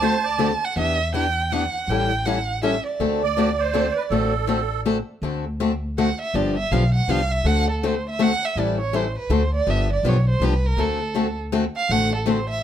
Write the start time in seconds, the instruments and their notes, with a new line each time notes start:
Already playing: upright bass D2, violin A5
0.01 steel-string acoustic guitar D3 A3 C4 F#4 A4, accordion C5
0.24 accordion D5
0.38 steel-string acoustic guitar D3 A3 C4 F#4 A4
0.65 violin F#5
0.76 upright bass E2, steel-string acoustic guitar E3 B3 D4 G4, violin E5
1.14 steel-string acoustic guitar E3 B3 D4 G4, violin G5
1.52 steel-string acoustic guitar E3 B3 D4 G4, violin F#5
1.88 upright bass A1, steel-string acoustic guitar E3 G3 C#4 E4 A4, violin G5
2.25 steel-string acoustic guitar E3 G3 C#4 E4 A4, violin F#5
2.62 steel-string acoustic guitar E3 G3 C#4 E4 A4, violin E5
2.87 violin D5
3.00 upright bass D2, steel-string acoustic guitar D3 A3 C4 F#4 A4
3.23 accordion D5
3.37 steel-string acoustic guitar D3 A3 C4 F#4 A4
3.59 accordion C5
3.73 steel-string acoustic guitar D3 A3 C4 F#4 A4
3.96 accordion B4
4.10 upright bass A1, steel-string acoustic guitar D3 A3 C4 F#4 A4, accordion A4
4.47 steel-string acoustic guitar D3 A3 C4 F#4 A4
4.85 steel-string acoustic guitar D3 A3 C4 F#4 A4
5.22 upright bass D2, steel-string acoustic guitar D3 A3 C4 F#4 A4
5.60 steel-string acoustic guitar D3 A3 C4 F#4 A4
5.98 steel-string acoustic guitar D3 A3 C4 F#4 A4, violin F#5
6.21 violin E5
6.34 upright bass G1, steel-string acoustic guitar D3 F3 B3 D4 G4, violin D5
6.57 violin E5
6.71 upright bass B1, steel-string acoustic guitar D3 F3 B3 D4 G4, violin F5
6.94 violin F#5
7.08 upright bass C2, steel-string acoustic guitar D3 F3 B3 D4 G4, violin F5
7.31 violin E5
7.44 upright bass D2, steel-string acoustic guitar D3 A3 C4 F#4 A4, violin F#5
7.70 violin A4
7.83 steel-string acoustic guitar D3 A3 C4 F#4 A4, violin C5
8.10 violin E5
8.19 steel-string acoustic guitar D3 A3 C4 F#4 A4, violin F#5
8.45 violin E5
8.55 upright bass A1, steel-string acoustic guitar E3 G3 C4 E4 A4, violin D5
8.80 violin C#5
8.93 steel-string acoustic guitar E3 G3 C4 E4 A4, violin C5
9.18 violin B4
9.30 upright bass D2, steel-string acoustic guitar D3 A3 C4 F#4 A4, violin C5
9.54 violin D5
9.67 upright bass G1, steel-string acoustic guitar D3 F3 B3 D4 G4, violin E5
9.93 violin D5
10.03 upright bass B1, steel-string acoustic guitar D3 F3 B3 D4 G4
10.08 violin C#5
10.29 violin C5
10.40 upright bass C2, steel-string acoustic guitar D3 F3 B3 D4 G4
10.44 violin B4
10.66 violin A#4
10.77 upright bass D2, steel-string acoustic guitar D3 A3 C4 F#4 A4, violin A4
11.14 steel-string acoustic guitar D3 A3 C4 F#4 A4
11.52 steel-string acoustic guitar D3 A3 C4 F#4 A4
11.76 violin F5
11.89 upright bass A1, steel-string acoustic guitar D3 A3 C4 F#4 A4, violin F#5
12.16 violin A4
12.26 steel-string acoustic guitar D3 A3 C4 F#4 A4, violin C5
12.49 violin E5